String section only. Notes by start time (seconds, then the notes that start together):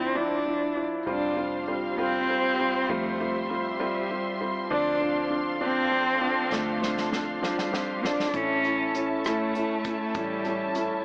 1.06 G4 C5 F5 C6
2.89 E5
4.70 D4 A4 F5
8.35 C#4 A4 E5 A5